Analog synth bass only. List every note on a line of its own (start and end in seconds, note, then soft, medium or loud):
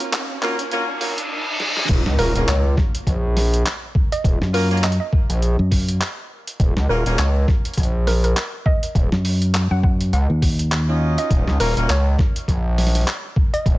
1.89 2.03 D#1 loud
2.06 2.17 C#2 medium
2.19 2.33 D#1 medium
2.35 2.46 D#1 loud
2.48 2.76 C#2 loud
3.07 3.64 A#1 medium
4.24 4.39 D#1 loud
5.30 5.56 A#1 loud
6.60 6.74 D#1 loud
6.77 6.87 C#2 loud
6.89 7.04 D#1 loud
7.06 7.17 D#1 medium
7.19 7.46 C#2 loud
7.77 8.34 A#1 medium
8.95 9.09 D#1 loud
10.13 10.27 C#2 medium
11.30 11.45 D#1 loud
11.48 11.58 C#2 loud
11.60 11.74 D#1 loud
11.77 11.87 D#1 loud
11.89 12.17 C#2 loud
12.48 13.05 A#1 loud
13.66 13.78 D#1 loud